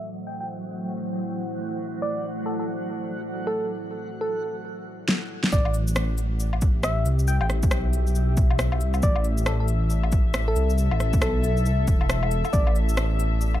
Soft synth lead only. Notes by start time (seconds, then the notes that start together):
0.27 G5
0.40 G5
2.02 D5
2.46 A4
2.59 A4
3.47 A4
4.21 A4
5.53 D5
6.84 E5
7.28 G5
7.41 G5
9.03 D5
9.47 A4
9.60 A4
10.48 A4
11.22 A4
12.53 D5